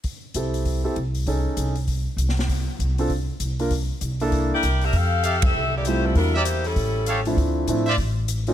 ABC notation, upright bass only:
X:1
M:4/4
L:1/8
Q:"Swing" 1/4=196
K:Cmix
V:1 name="Upright bass" clef=bass
z2 C,,3 z C,,2- | C,, z C,,3 z C,,2- | C,, z C,,3 z C,,2- | C,, z C,,3 z C,,2 |
F,,4 C,,4 | E,,4 A,,,4 | D,,2 A,,2 A,,,4 |]